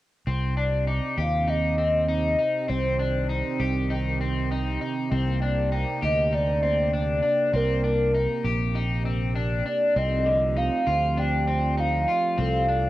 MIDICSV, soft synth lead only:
0, 0, Header, 1, 2, 480
1, 0, Start_track
1, 0, Tempo, 606061
1, 211, Time_signature, 4, 2, 24, 8
1, 10214, End_track
2, 0, Start_track
2, 0, Title_t, "Soft synth lead"
2, 0, Program_c, 0, 80
2, 956, Note_on_c, 0, 77, 92
2, 1186, Note_on_c, 0, 75, 99
2, 1198, Note_off_c, 0, 77, 0
2, 1655, Note_off_c, 0, 75, 0
2, 1660, Note_on_c, 0, 75, 90
2, 2134, Note_on_c, 0, 72, 86
2, 2145, Note_off_c, 0, 75, 0
2, 3092, Note_off_c, 0, 72, 0
2, 4782, Note_on_c, 0, 75, 100
2, 5022, Note_on_c, 0, 74, 92
2, 5034, Note_off_c, 0, 75, 0
2, 5497, Note_off_c, 0, 74, 0
2, 5505, Note_on_c, 0, 74, 95
2, 5987, Note_on_c, 0, 70, 89
2, 5999, Note_off_c, 0, 74, 0
2, 6939, Note_off_c, 0, 70, 0
2, 7654, Note_on_c, 0, 74, 80
2, 7900, Note_on_c, 0, 75, 95
2, 7912, Note_off_c, 0, 74, 0
2, 8374, Note_on_c, 0, 77, 93
2, 8386, Note_off_c, 0, 75, 0
2, 8862, Note_on_c, 0, 79, 92
2, 8874, Note_off_c, 0, 77, 0
2, 9343, Note_on_c, 0, 77, 98
2, 9355, Note_off_c, 0, 79, 0
2, 9812, Note_off_c, 0, 77, 0
2, 10214, End_track
0, 0, End_of_file